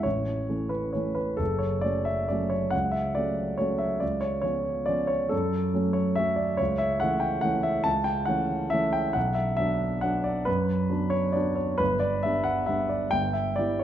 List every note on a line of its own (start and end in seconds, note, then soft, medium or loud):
0.03 0.48 A1 soft
0.03 0.71 C#5 medium
0.49 0.91 E3 soft
0.49 0.91 A3 soft
0.49 0.92 C#4 soft
0.69 0.94 B4 medium
0.93 1.36 E3 soft
0.93 1.36 A3 soft
0.93 1.36 C#4 soft
0.93 1.17 C#5 medium
1.15 1.38 B4 medium
1.37 1.82 F#1 medium
1.37 1.60 A4 medium
1.59 1.82 C#5 medium
1.81 2.26 F#3 soft
1.81 2.26 A3 soft
1.81 2.26 C#4 soft
1.81 2.06 D5 medium
2.05 2.29 E5 medium
2.28 2.69 F#3 soft
2.28 2.70 A3 soft
2.28 2.70 C#4 soft
2.28 2.51 D5 medium
2.50 2.72 C#5 medium
2.70 3.15 C#2 soft
2.70 2.93 F#5 medium
2.91 3.15 E5 medium
3.15 3.55 F#3 soft
3.15 3.56 A3 soft
3.15 3.56 C#4 soft
3.15 3.58 D5 medium
3.58 3.98 F#3 soft
3.58 3.98 A3 soft
3.58 3.99 C#4 soft
3.58 3.80 C#5 medium
3.78 4.01 E5 medium
4.00 4.43 C#2 soft
4.00 4.22 D5 medium
4.21 4.40 C#5 medium
4.42 4.84 F3 soft
4.42 4.84 B3 soft
4.42 4.84 C#4 soft
4.42 4.87 C#5 medium
4.86 5.28 F3 soft
4.86 5.28 B3 soft
4.86 5.28 C#4 soft
4.86 5.09 D5 medium
5.07 5.30 C#5 medium
5.29 5.73 F#2 medium
5.29 5.95 A4 medium
5.74 6.13 F#3 soft
5.74 6.14 A3 soft
5.74 6.14 C#4 soft
5.93 6.16 C#5 medium
6.15 6.56 F#3 soft
6.15 6.56 A3 soft
6.15 6.56 C#4 soft
6.15 6.38 E5 medium
6.36 6.58 D5 medium
6.57 7.00 C#2 medium
6.57 6.79 C#5 medium
6.78 7.00 E5 medium
7.00 7.39 E3 soft
7.00 7.39 A3 soft
7.00 7.40 C#4 soft
7.00 7.21 F#5 medium
7.20 7.42 G5 medium
7.41 7.81 E3 soft
7.41 7.81 A3 soft
7.41 7.82 C#4 soft
7.41 7.63 F#5 medium
7.63 7.85 E5 medium
7.84 8.26 C#2 medium
7.84 8.05 A5 medium
8.04 8.27 G5 medium
8.25 8.69 E3 soft
8.25 8.69 A3 soft
8.25 8.69 C#4 soft
8.25 8.72 F#5 medium
8.70 9.12 E3 soft
8.70 9.12 A3 soft
8.70 9.12 C#4 soft
8.70 8.94 E5 medium
8.93 9.15 G5 medium
9.13 9.57 B1 medium
9.13 9.36 F#5 medium
9.35 9.55 E5 medium
9.57 9.99 F#3 soft
9.57 10.00 B3 soft
9.57 10.00 D4 soft
9.57 10.03 E5 medium
10.01 10.43 F#3 soft
10.01 10.43 B3 soft
10.01 10.43 D4 soft
10.01 10.25 F#5 medium
10.24 10.46 D5 medium
10.45 10.89 F#2 medium
10.45 11.11 B4 medium
10.90 11.31 F#3 soft
10.90 11.31 B3 soft
10.90 11.32 D4 soft
11.10 11.34 C#5 medium
11.32 11.76 F#3 soft
11.32 11.76 B3 soft
11.32 11.76 D4 soft
11.32 11.57 D5 medium
11.55 11.79 C#5 medium
11.78 12.22 G1 medium
11.78 12.00 B4 medium
12.00 12.23 D5 medium
12.23 12.65 G3 soft
12.23 12.65 B3 soft
12.23 12.65 D4 soft
12.23 12.45 E5 medium
12.44 12.67 F#5 medium
12.66 13.08 G3 soft
12.66 13.08 B3 soft
12.66 13.08 D4 soft
12.66 12.89 E5 medium
12.89 13.11 D5 medium
13.11 13.56 G1 medium
13.11 13.33 G5 medium
13.33 13.57 E5 medium
13.56 13.84 G3 soft
13.56 13.84 B3 soft
13.56 13.84 E4 soft
13.56 13.80 D5 medium
13.79 13.84 C#5 medium